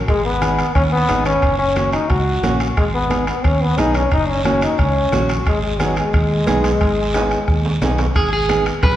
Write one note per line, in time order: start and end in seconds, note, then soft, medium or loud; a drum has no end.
0.08 0.62 G#1 medium
0.08 0.24 G#3 medium
0.08 bombo low medium
0.08 bombo rim medium
0.08 high conga soft
0.08 high timbale medium
0.08 long guiro medium
0.25 0.72 B3 medium
0.41 0.65 B3 medium
0.41 0.65 D#4 medium
0.41 0.65 G#4 medium
0.41 bombo rim medium
0.41 high conga medium
0.41 high timbale medium
0.41 short guiro medium
0.59 bombo rim medium
0.59 high timbale medium
0.59 short guiro medium
0.75 1.02 D#2 medium
0.75 0.83 C#4 medium
0.75 bombo low medium
0.75 bombo rim medium
0.75 high conga soft
0.75 high timbale medium
0.75 long guiro medium
0.92 1.23 B3 loud
1.08 1.36 G#1 medium
1.08 1.32 B3 medium
1.08 1.32 D#4 medium
1.08 1.33 G#4 medium
1.08 bombo rim medium
1.08 high conga medium
1.08 high timbale medium
1.08 short guiro medium
1.25 1.57 C#4 medium
1.25 bombo rim medium
1.25 high timbale medium
1.25 short guiro medium
1.42 1.96 F#1 medium
1.42 bombo low medium
1.42 bombo rim medium
1.42 high conga soft
1.42 high timbale medium
1.42 long guiro medium
1.59 1.90 C#4 medium
1.76 1.99 A#3 medium
1.76 2.00 C#4 medium
1.76 2.00 F#4 medium
1.76 bombo rim medium
1.76 high conga medium
1.76 high timbale medium
1.76 short guiro medium
1.93 2.11 D#4 medium
1.93 bombo rim medium
1.93 high timbale medium
1.93 short guiro medium
2.09 2.37 C#2 medium
2.09 2.60 F#4 medium
2.09 bombo low medium
2.09 bombo rim medium
2.09 high conga soft
2.09 high timbale medium
2.09 long guiro medium
2.43 2.70 A#1 medium
2.43 2.67 A#3 medium
2.43 2.67 C#4 medium
2.43 2.67 F#4 medium
2.43 bombo rim medium
2.43 high conga medium
2.43 high timbale medium
2.43 low timbale medium
2.43 short guiro medium
2.60 bombo rim medium
2.60 high timbale medium
2.60 short guiro medium
2.77 3.31 G#1 medium
2.77 2.85 G#3 medium
2.77 bombo low medium
2.77 bombo rim medium
2.77 high conga soft
2.77 high timbale medium
2.77 long guiro medium
2.95 3.26 B3 medium
3.10 3.34 B3 medium
3.10 3.34 D#4 medium
3.10 3.34 G#4 medium
3.10 bombo rim medium
3.10 high conga medium
3.10 high timbale medium
3.10 short guiro medium
3.27 3.46 B3 medium
3.27 bombo rim medium
3.27 high timbale medium
3.27 short guiro medium
3.44 3.71 D#2 medium
3.44 3.63 C#4 medium
3.44 bombo low medium
3.44 bombo rim medium
3.44 high conga soft
3.44 high timbale medium
3.44 long guiro medium
3.61 3.79 B3 medium
3.78 4.05 B1 medium
3.78 4.02 B3 medium
3.78 3.97 D#4 medium
3.78 4.02 D#4 medium
3.78 4.02 G#4 medium
3.78 bombo rim medium
3.78 high conga medium
3.78 high timbale medium
3.78 short guiro medium
3.94 4.12 C#4 medium
3.94 bombo rim medium
3.94 high timbale medium
3.94 short guiro medium
4.11 4.66 F#1 medium
4.11 4.31 D#4 medium
4.11 bombo low medium
4.11 bombo rim medium
4.11 high conga soft
4.11 high timbale medium
4.11 long guiro medium
4.29 4.45 C#4 medium
4.45 4.69 A#3 medium
4.45 4.69 C#4 medium
4.45 4.61 C#4 medium
4.45 4.69 F#4 medium
4.45 bombo rim medium
4.45 high conga medium
4.45 high timbale medium
4.45 short guiro medium
4.62 4.81 D#4 medium
4.62 bombo rim medium
4.62 high timbale medium
4.62 short guiro medium
4.78 5.06 C#2 medium
4.78 5.30 C#4 medium
4.78 bombo low medium
4.78 bombo rim medium
4.78 high conga soft
4.78 high timbale medium
4.78 long guiro medium
5.12 5.39 A#1 medium
5.12 5.36 A#3 medium
5.12 5.36 C#4 medium
5.12 5.36 F#4 medium
5.12 bombo rim medium
5.12 high conga medium
5.12 high timbale medium
5.12 low timbale medium
5.12 short guiro medium
5.29 bombo rim medium
5.29 high timbale medium
5.29 short guiro medium
5.46 6.00 G#1 medium
5.46 5.62 G#3 medium
5.46 bombo low medium
5.46 bombo rim medium
5.46 high conga soft
5.46 high timbale medium
5.46 long guiro medium
5.63 5.82 G#3 medium
5.79 5.97 F#3 medium
5.79 6.03 B3 medium
5.79 6.04 D#4 medium
5.79 6.04 G#4 medium
5.79 bombo rim medium
5.79 high conga medium
5.79 high timbale medium
5.79 short guiro medium
5.96 7.78 G#3 medium
5.96 bombo rim medium
5.96 high timbale medium
5.96 short guiro medium
6.13 6.41 D#2 medium
6.13 bombo low medium
6.13 bombo rim medium
6.13 high conga soft
6.13 high timbale medium
6.13 long guiro medium
6.46 6.74 B1 medium
6.46 6.70 B3 medium
6.46 6.71 D#4 medium
6.46 6.71 G#4 medium
6.46 bombo rim medium
6.46 high conga medium
6.46 high timbale medium
6.46 low timbale medium
6.46 short guiro medium
6.64 bombo rim medium
6.64 high timbale medium
6.64 short guiro medium
6.81 7.35 G#1 medium
6.81 bombo low medium
6.81 bombo rim medium
6.81 high conga soft
6.81 high timbale medium
6.81 long guiro medium
7.14 7.38 B3 medium
7.14 7.38 D#4 medium
7.14 7.38 G#4 medium
7.14 bombo rim medium
7.14 high conga medium
7.14 high timbale medium
7.14 short guiro medium
7.31 bombo rim medium
7.31 short guiro medium
7.48 7.75 D#2 medium
7.48 bombo low medium
7.48 bombo rim medium
7.48 high conga soft
7.48 long guiro medium
7.65 low timbale medium
7.82 8.09 B1 medium
7.82 8.05 B3 medium
7.82 8.05 D#4 medium
7.82 8.06 G#4 medium
7.82 bombo rim medium
7.82 high conga medium
7.82 low timbale loud
7.82 short guiro medium
7.98 bombo rim medium
7.98 low timbale medium
7.98 short guiro medium
8.15 8.69 G#1 medium
8.15 8.31 G#4 medium
8.15 bombo low medium
8.15 bombo rim medium
8.15 high conga soft
8.15 high timbale medium
8.15 long guiro medium
8.33 8.64 G#4 loud
8.49 8.72 B3 medium
8.49 8.73 D#4 medium
8.49 8.73 G#4 medium
8.49 bombo rim medium
8.49 high conga medium
8.49 high timbale medium
8.49 short guiro medium
8.66 bombo rim medium
8.66 high timbale medium
8.66 short guiro medium
8.83 8.96 B1 medium
8.83 8.96 B4 loud
8.83 bombo low medium
8.83 bombo rim medium
8.83 high conga soft
8.83 low conga medium
8.83 high timbale medium
8.83 long guiro medium